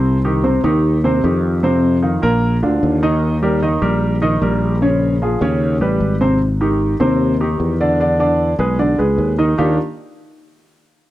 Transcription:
X:1
M:4/4
L:1/8
Q:1/4=151
K:Eb
V:1 name="Grand piano"
[C,Cc] [E,EG] [C,Cc] [E,EG]2 [C,Cc] [E,EG]2 | [C,Cc]2 [E,EF] [B,,B,B]2 [D,DF]2 [E,Ee]- | [E,Ee] [G,GB] [E,Ee] [G,GB]2 [E,Ee] [G,GB]2 | [_D,_D_d]2 [F,FA] [D,Dd]2 [G,G=B]2 [C,Cc] |
z [E,EG]2 [C,Cc]2 [E,EG]2 [D,Dd] | [D,Dd] [D,Dd]2 [^G,^G=B] [D,Dd] [G,GB]2 [E,Ee] | [E,B,DEFG] z6 z |]
V:2 name="Fretless electric bass" clef=bass
C,,3 E,,3 F,,2- | F,,3 B,,,2 D,, E,,2- | E,,3 B,,,3 B,,,2- | B,,,3 E,,2 =A,,, _A,,,2- |
A,,,3 E,,3 _F,,2- | _F,,3 =B,,,2 _D,, E,,2 | E,, z6 z |]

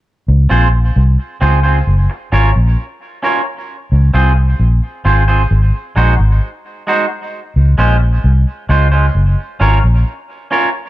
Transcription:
X:1
M:4/4
L:1/16
Q:1/4=66
K:Db
V:1 name="Clean electric guitar"
z2 [CFAc] z3 [CFAc] [CFAc] z2 [DFBd] z3 [DFBd] z | z2 [CFAc] z3 [CFAc] [CFAc] z2 [A,EGc] z3 [A,EGc] z | z2 [A,DFc] z3 [A,DFc] [A,DFc] z2 [DFBd] z3 [DFBd] z |]
V:2 name="Fingered electric bass" clef=bass
z D,, B,,,2 C,, z D,,2 G,,, z A,,, B,,, z4 | z D,, C,,2 B,,, z A,,,2 A,,, z B,,, A,,, z4 | z D,, B,,,2 C,, z D,,2 G,,, z A,,, B,,, z4 |]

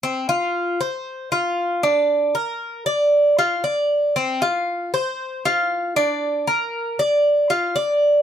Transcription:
X:1
M:4/4
L:1/8
Q:1/4=116
K:Bblyd
V:1 name="Cuban tres"
C F2 c2 F2 D- | D B2 d2 F d2 | C F2 c2 F2 D- | D B2 d2 F d2 |]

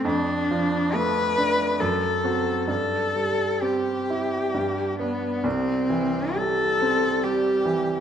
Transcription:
X:1
M:3/4
L:1/8
Q:1/4=67
K:C
V:1 name="Cello"
D2 B2 A2 | A2 G3 B, | C2 A2 G2 |]
V:2 name="Grand piano" clef=bass
F,, F, A, D ^F,, [C^F] | G,, G, C E G,, [B,D] | C,, E, G, C G, E, |]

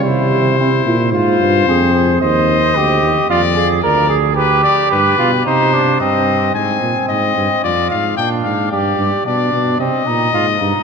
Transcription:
X:1
M:4/4
L:1/8
Q:1/4=111
K:Cphr
V:1 name="Trumpet"
c4 c4 | e4 =d2 d z | =B =d B2 c2 e2 | a2 e2 =d f g f |
=d2 d2 e4 |]
V:2 name="Flugelhorn"
=E2 E2 F2 A A | c2 G2 F A B A | G3 F E =D C2 | C4 F2 =D2 |
G2 =D2 C E F E |]
V:3 name="Euphonium"
G,2 C =E F2 C2 | z8 | z8 | z8 |
z8 |]
V:4 name="Bass trombone" clef=bass
C,3 B,, A,, G,, F,,2 | E,,2 =D,, E,, F,,2 D,,2- | =D,, z G,, =B,, C,2 G,,2 | A,, B,, A,, G,, F,, A,, B,, A,, |
G,, G,, =B,, B,, C, _B,, A,, G,, |]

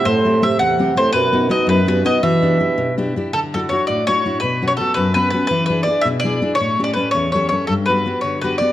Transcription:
X:1
M:6/8
L:1/16
Q:3/8=110
K:Em
V:1 name="Mandolin"
c4 e2 f4 c2 | B4 ^d2 B2 B2 d2 | e8 z4 | [K:D] A2 A2 c2 d2 c4 |
B3 c A2 B2 B2 B2 | B2 B2 d2 e2 d4 | c3 d B2 c2 c2 c2 | A2 B4 c2 B2 d2 |]
V:2 name="Nylon-string guitar"
A,,2 [A,CG]2 [A,CG]2 E,,2 [A,CG]2 [A,CG]2 | B,,2 [B,^DF]2 [B,DF]2 F,,2 [B,DF]2 [B,DF]2 | E,2 [DEG]2 [DEG]2 B,,2 [DEG]2 [DEG]2 | [K:D] D,2 [DEF]2 [DEF]2 A,,2 [DEF]2 [DEF]2 |
B,,2 [B,CF]2 [B,CF]2 F,,2 [B,CF]2 [B,CF]2 | E,2 [DE^G]2 [DEG]2 B,,2 [DEG]2 [DEG]2 | A,,2 [CGA]2 [CGA]2 E,,2 [CGA]2 [CGA]2 | G,,2 [B,FG]2 [B,FG]2 D,2 [B,FG]2 [B,FG]2 |]
V:3 name="Bassoon" clef=bass
A,,4 C,2 C,4 A,,2 | F,,4 B,,2 F,,2 G,,2 B,,2 | B,,8 z4 | [K:D] z12 |
z12 | z12 | z12 | z12 |]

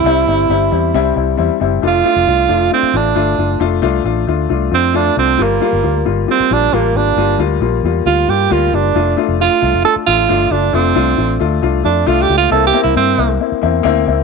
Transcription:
X:1
M:4/4
L:1/16
Q:1/4=135
K:F
V:1 name="Tenor saxophone"
E12 z4 | F8 C2 D6 | z8 z2 C2 D2 C2 | B,6 z2 C2 D2 B,2 D2- |
D2 z6 F2 G2 F2 D2- | D2 z2 F4 A2 F4 D2 | C6 z4 D2 (3F2 G2 F2 | (3A2 G2 E2 C4 z8 |]
V:2 name="Grand piano"
[G,CE]2 [G,CE]2 [G,CE]2 [G,CE]2 [G,CE]2 [G,CE]2 [G,CE]2 [G,CE]2 | [A,DF]2 [A,DF]2 [A,DF]2 [A,DF]2 [A,DF]2 [A,DF]2 [A,DF]2 [A,DF]2 | [A,DF]2 [A,DF]2 [A,DF]2 [A,DF]2 [A,DF]2 [A,DF]2 [A,DF]2 [A,DF]2 | [G,B,F]2 [G,B,F]2 [G,B,F]2 [G,B,F]2 [G,B,F]2 [G,B,F]2 [G,B,F]2 [G,B,F]2 |
[G,B,F]2 [G,B,F]2 [G,B,F]2 [G,B,F]2 [G,B,F]2 [G,B,F]2 [G,B,F]2 [G,B,F]2 | [A,DF]2 [A,DF]2 [A,DF]2 [A,DF]2 [A,DF]2 [A,DF]2 [A,DF]2 [A,DF]2 | [A,DF]2 [A,DF]2 [A,DF]2 [A,DF]2 [A,DF]2 [A,DF]2 [A,DF]2 [A,DF]2 | [B,CE]2 [B,CE]2 [B,CE]2 [B,CE]2 [B,CE]2 [B,CE]2 [B,CE]2 [B,CE]2 |]
V:3 name="Fingered electric bass" clef=bass
C,,2 G,,,2 G,,,2 E,,2 C,,2 C,,2 E,, z _G,,,2 | F,,,2 z F,,, C,,2 F,,,2 z2 A,,,2 G,,,2 _G,,,2 | F,,,2 C,,2 A,,,2 D,,2 C,,2 F,,4 C,,2 | G,,,2 z G,,, D,,2 G,,,2 z2 B,,,2 A,,,2 _A,,,2 |
G,,,2 D,,2 B,,,2 E,,2 D,,2 G,,2 D,,2 _G,,,2 | F,,,2 z F,,,2 z C,, F,,, z2 A,,,2 G,,,2 _G,,,2 | F,,,2 C,,2 A,,,2 D,,2 C,,2 F,,2 C,,2 _D,,2 | C,,2 z C,, G,,2 C,,2 z2 E,,2 D,,2 _D,,2 |]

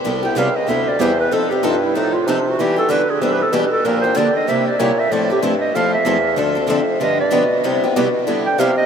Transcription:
X:1
M:4/4
L:1/8
Q:"Swing" 1/4=190
K:C
V:1 name="Clarinet"
z g f _e =e d c B | A G F E _E F (3E D ^F | G A B _A (3=A B A G A | _B c d _e =e d _d e |
d G z _e f =e3 | z3 c _e d3 | z4 z g f _e |]
V:2 name="Steel-string acoustic guitar"
[C,G,B,EG] [B,EG] [C,G,B,EG] z [C,G,B,EG] z [C,G,B,EG] z | [F,C_EA] [CEA] [F,CEA] z [F,CEA] z [F,CEA] z | [E,B,DG] [B,DG] [E,B,DG] z [E,B,DG] z [E,B,DG] z | [D,F,_B,DG] [B,DG] [D,F,B,DG] z [C,G,B,EG] z [C,G,B,EG] z |
[F,A,CEA] [CEA] [F,A,CEA] z [F,A,CEA] z [F,A,CEA] z | [D,F,CDA] [CDA] [D,F,CDA] z [D,F,B,DG] z [D,F,B,DG] z | [C,G,B,EG] [B,EG] [C,G,B,EG] z [C,G,B,EG] z [C,G,B,EG] z |]
V:3 name="Steel-string acoustic guitar"
[C,G,B,EG] z [C,G,B,EG] z [C,G,B,EG] z [C,G,B,EG] z | [F,C_EA] z [F,CEA] z [F,CEA] z [F,CEA] z | [E,G,DEB] z [E,G,DEB] z [E,G,DEB] z [E,G,DEB] z | [D,F,_B,DG] z [D,F,B,DG] z [C,G,B,EG] z [C,G,B,EG] z |
[F,CEA] z [F,CEA] z [F,CEA] z [F,CEA] z | [D,F,CDA] z [D,F,CDA] z [D,F,B,DG] z [D,F,B,DG] z | [C,G,B,EG] z [C,G,B,EG] z [C,G,B,EG] z [C,G,B,EG] z |]
V:4 name="Bassoon" clef=bass
C,,2 _D,,2 =D,,2 E,,2 | F,, F,, G,,2 A,,2 C,2 | E,2 D,2 C,2 B,,2 | _B,,2 D,2 C,2 B,,2 |
A,,2 G,,2 F,,2 E,,2 | D,,2 F,,2 G,,2 B,,2 | C,2 B,,2 D,2 C,2 |]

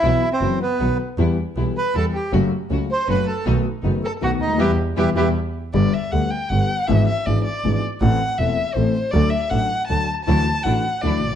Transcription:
X:1
M:3/4
L:1/16
Q:1/4=158
K:Em
V:1 name="Violin"
E3 C3 B,4 z2 | z6 B2 A2 G2 | z6 c2 B2 A2 | z6 A2 F2 ^D2 |
G2 z2 G2 G2 z4 | [K:G] d2 e2 f2 g2 f4 | e2 e2 d2 d4 z2 | f4 e4 c4 |
d2 e2 f4 a3 z | a4 f4 d4 |]
V:2 name="Bandoneon"
[Ee]3 [Cc]3 [B,B]4 z2 | z6 [Bb]2 [Aa]2 [Gg]2 | z6 [cc']2 [Bb]2 [Aa]2 | z6 [Aa]2 [Ff]2 [^D^d]2 |
[GBe]2 z2 [GBe]2 [GBe]2 z4 | [K:G] z12 | z12 | z12 |
z12 | z12 |]
V:3 name="String section"
[F,B,E]2 z2 [F,B,E]2 z2 [F,B,^D]2 z2 | [G,B,E]2 z2 [G,B,E]2 z2 [G,B,E]2 z2 | [A,^CF]2 z2 [A,CF]2 z2 [A,CF]2 z2 | [A,B,^D]2 z2 [A,B,D]2 z2 [A,B,D]2 z2 |
[G,B,E]2 z2 [G,B,E]2 [G,B,E]2 z4 | [K:G] z12 | z12 | z12 |
z12 | [F,DE]2 z2 [F,DE]2 z2 [F,DE]2 z2 |]
V:4 name="Grand piano" clef=bass
[B,,,B,,E,F,B,F]2 z2 [F,,,F,,E,F,B,F]2 z2 [B,,,B,,^D,F,B,F]2 z2 | [E,,E,G,B,G]2 z2 [B,,,B,,E,G,B,G]2 z2 [E,,E,G,B,G]2 z2 | [F,,^C,F,A,F]2 z2 [^C,,C,F,A,F]2 z2 [F,,C,F,A,F]2 z2 | [B,,,B,,^D,A,B,F]2 z2 [F,,,F,,D,A,B,F]2 z2 [B,,,B,,D,A,B,F]2 z/2 ^C,,/2 =D,,/2 ^D,,/2 |
[B,,E,G,]2 z2 [B,,E,G,]2 [B,,E,G,]2 z4 | [K:G] [G,,,G,,D,G,B,G]2 z2 [D,,D,G,B,G]2 z2 [G,,,G,,D,G,B,G]2 z2 | [^G,,,^G,,E,B,D^G]2 z2 [G,,,G,,E,B,DG]2 z2 [G,,,G,,E,B,DG]2 z2 | [A,,,A,,E,A,CA]2 z2 [E,,,E,,E,A,CA]2 z2 [A,,,A,,E,A,CA]2 z2 |
[D,,D,F,A,DA]2 z2 [A,,,A,,F,A,DA]2 z2 [D,,D,F,A,DA]2 z2 | [D,,D,E,A,DF]2 z2 [A,,,A,,E,A,DF]2 z2 [D,,D,E,A,DF]2 z/2 A,,,/2 z |]
V:5 name="Double bass" clef=bass
B,,,2 z2 F,,,2 z2 B,,,2 z2 | E,,2 z2 B,,,2 z2 E,,2 z2 | F,,,2 z2 ^C,,2 z2 F,,,2 z2 | B,,,2 z2 F,,,2 z2 B,,,2 D,,2 |
E,,2 z2 E,,2 E,,2 z4 | [K:G] G,,,2 z2 D,,2 z2 G,,,2 z2 | ^G,,,2 z2 G,,,2 z2 G,,,2 z2 | A,,,2 z2 E,,,2 z2 A,,,2 z2 |
D,,2 z2 A,,,2 z2 D,,2 z2 | D,,2 z2 A,,,2 z2 D,,2 _B,,,2 |]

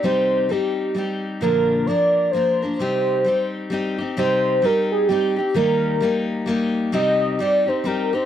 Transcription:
X:1
M:3/4
L:1/8
Q:"Swing" 1/4=131
K:Cm
V:1 name="Soft synth lead"
c2 G3 z | B2 d2 c2 | c4- c z | c2 B A G G |
B4- B z | e2 d c B c |]
V:2 name="Steel-string acoustic guitar"
[C,G,CEG]2 [G,CEG]2 [G,CEG]2 | [B,,D,F,B,DB]2 [F,B,DB]2 [F,B,DB] [F,B,DB] | [C,G,CEG]2 [G,CEG]2 [G,CEG] [CEG] | [C,G,CEG]2 [G,CEG]2 [G,CEG] [CEG] |
[E,G,B,EG]2 [G,B,EG]2 [G,B,EG]2 | [C,G,CEG]2 [G,CEG] [CEG] [G,CEG] [CEG] |]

